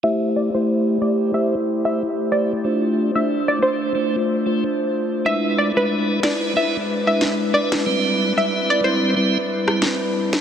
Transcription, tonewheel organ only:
X:1
M:4/4
L:1/16
Q:"Swing 16ths" 1/4=92
K:Am
V:1 name="Tonewheel organ"
[A,EGc]3 [A,EGc]3 [A,EGc]2 [A,EGc] z2 [A,EGc] z2 [A,EGc] z | [A,DFc]3 [A,DFc]3 [A,DFc]2 [A,DFc] z2 [A,DFc] z4 | [^G,DEB]3 [G,DEB]3 [G,DEB]2 [G,DEB] z2 [G,DEB] z2 [G,DEB] z | [G,CEB]3 [G,CEB]3 [G,CEB]2 [G,CEB] z2 [G,CEB] z4 |]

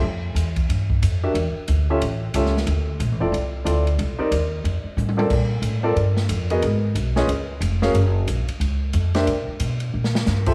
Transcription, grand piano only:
X:1
M:4/4
L:1/8
Q:"Swing" 1/4=182
K:F
V:1 name="Grand piano"
z6 z [D_G=GBe] | z3 [_DFGAe] z2 [^CFGAe] z | z3 [CEFAd] z2 [CEFAd] z | z [C_EGBd] z4 z [CFABd] |
z3 [CFABd] z3 [=B,_G_A_B_e] | z3 [_DF_A_c_e] z3 [D_GABf] | z6 z [DGBce] | z6 z [FGAce] |]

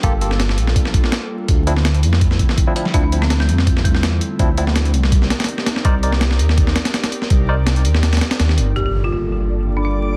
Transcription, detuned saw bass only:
X:1
M:4/4
L:1/8
Q:"Swing 16ths" 1/4=165
K:Gm
V:1 name="Detuned saw bass" clef=bass
G,,,3 B,,,2 z3 | D,,3 F,,2 z3 | D,,3 F,,2 =E,,2 z | D,,3 C,,2 z3 |
C,,3 E,,2 z3 | C,,3 E,,2 z E,, G,,, | z8 |]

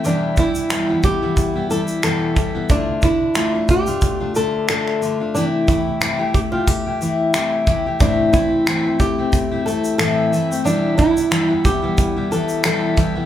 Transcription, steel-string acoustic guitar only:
X:1
M:4/4
L:1/16
Q:"Swing 16ths" 1/4=90
K:Ephr
V:1 name="Steel-string acoustic guitar"
[E,,B,,E,G,B,E]2 [E,G,B,E]2 [E,,B,,E,G,B,E] [E,G,B,E]2 [E,G,B,E]2 [E,G,B,E] [E,G,B,E]2 [E,,B,,E,G,B,E]2 [E,G,B,E] [E,G,B,E] | [D,A,DF]2 [D,A,D]2 [D,A,DF] [A,DF]2 [A,DF]2 [A,DF] [D,A,DF]2 [D,A,DF]2 [D,A,DF] [A,DF] | [C,E,A,EG]2 [E,A,EG]2 [C,E,A,EG] [A,EG]2 [A,EG]2 [A,EG] [E,A,EG]2 [C,E,A,EG]2 [E,A,EG] [A,EG] | [A,,E,A,CE]2 [E,A,CE]2 [A,,E,A,CE] [A,CE]2 [A,CE]2 [A,CE] [E,A,CE]2 [A,,E,A,CE]2 [E,A,CE] [A,CE] |
[E,,B,,E,G,B,E]2 [E,G,B,E]2 [E,,B,,E,G,B,E] [E,G,B,E]2 [E,G,B,E]2 [E,G,B,E] [E,G,B,E]2 [E,,B,,E,G,B,E]2 [E,G,B,E] [E,G,B,E] |]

